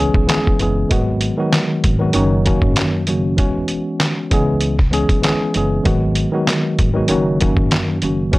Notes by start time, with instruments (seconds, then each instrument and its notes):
Already playing: upright bass C#2, tine electric piano E3 G#3 B3
0.00 tine electric piano C#4 G#4
0.14 upright bass B1, kick
0.27 tine electric piano E3 G#3 B3 C#4 G#4, snare, clap, closed hi-hat
0.47 kick
0.59 upright bass F#1, tine electric piano E3 G#3 B3 C#4 G#4, closed hi-hat
0.89 upright bass G#1, tine electric piano D#3 F#3 G#3 B3 F#4, kick, closed hi-hat
1.21 closed hi-hat
1.37 tine electric piano D#3 F#3 G#3 B3 F#4
1.53 snare, clap, closed hi-hat
1.84 upright bass G#1, kick, closed hi-hat
1.99 tine electric piano D#3 F#3 G#3 B3 F#4
2.13 upright bass F#1, tine electric piano F#2 D#3 F#3 A#3 C#4 F#4, closed hi-hat
2.45 tine electric piano F#2 D#3 F#3 A#3 C#4 F#4, kick, closed hi-hat
2.62 upright bass G#1, kick
2.76 snare, clap, closed hi-hat
3.07 upright bass F#1, tine electric piano F#2 D#3 F#3 A#3 C#4 F#4, closed hi-hat
3.37 upright bass E1, tine electric piano E3 G#3 B3 C#4 F#4, kick, closed hi-hat
3.68 closed hi-hat
4.00 snare, clap, closed hi-hat
4.31 upright bass C#2, tine electric piano E3 G#3 B3 C#4 G#4, kick, closed hi-hat
4.61 closed hi-hat
4.79 kick, snare
4.91 tine electric piano E3 G#3 B3 C#4 G#4, closed hi-hat
5.09 upright bass B1, kick, closed hi-hat
5.22 tine electric piano E3 G#3 B3 C#4 G#4, snare, clap, closed hi-hat
5.54 upright bass F#1, tine electric piano E3 G#3 B3 C#4 G#4, closed hi-hat
5.84 upright bass G#1, tine electric piano D#3 F#3 G#3 B3 F#4, kick, closed hi-hat
6.15 closed hi-hat
6.32 tine electric piano D#3 F#3 G#3 B3 F#4
6.47 snare, clap, closed hi-hat
6.79 upright bass G#1, kick, closed hi-hat
6.94 tine electric piano D#3 F#3 G#3 B3 F#4
7.08 upright bass F#1, tine electric piano F#2 D#3 F#3 A#3 C#4 F#4, closed hi-hat
7.40 tine electric piano F#2 D#3 F#3 A#3 C#4 F#4, kick, closed hi-hat
7.57 upright bass G#1, kick
7.71 snare, clap, closed hi-hat
8.02 upright bass F#1, tine electric piano F#2 D#3 F#3 A#3 C#4 F#4, closed hi-hat
8.31 upright bass E1, tine electric piano E3 G#3 B3 C#4 F#4, kick, closed hi-hat